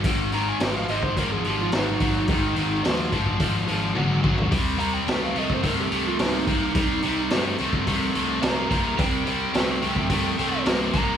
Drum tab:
HH |o-o-o-o-o-o-o-o-|o-o-o-o-o-o-----|o-o-o-o-o-o-o-o-|o-o-o-o-o-o-o-o-|
SD |----o-------o---|----o-----------|----o-------o---|----o-------o---|
T1 |----------------|------------o---|----------------|----------------|
FT |----------------|---------------o|----------------|----------------|
BD |o------oo-----o-|o-----ooo-----o-|o------oo-----o-|o------oo-----o-|

HH |o-o-o-o-o-o-o-o-|
SD |----o-------o---|
T1 |----------------|
FT |----------------|
BD |o------oo-----o-|